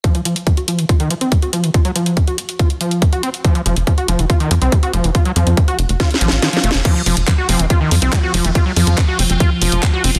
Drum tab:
CC |------------------------------------------------|------------------------------------------------|------------------------------------------------|------------------------------------------------|
HH |x--x--x--x--x--x--x--x--x--x--x--x--x--x--x--x--|x--x--x--x--x--x--x--x--x--x--x--x--x--x--x--x--|x--x--x--x--x--x--x--x--x--x--x--x--x--x--x--x--|x--x--x--x--x--x--x--x--x--x--x--x--x--x--x--x--|
CP |------------------------------------------------|------------------------------------------------|------------------------------------------------|------------------------------------------------|
SD |------------------------------------------------|------------------------------------------------|------------------------------------------------|------------------------o---o---o---o---o---o---|
BD |o-----------o-----------o-----------o-----------|o-----------o-----------o-----------o-----------|o-----------o-----------o-----------o-----------|o-----------o-----------o-----------------------|

CC |x-----------------------------------------------|------------------------------------------------|
HH |x-----o--x--x-----o--x--x-----o--x--x-----o--x--|x-----o--x--x-----o--x--x-----o--x--x-----o--x--|
CP |------------x-----------------------x-----------|------------x-----------------------x-----------|
SD |------------------------------------------------|------------------------------------------------|
BD |o-----------o-----------o-----------o-----------|o-----------o-----------o-----------o-----------|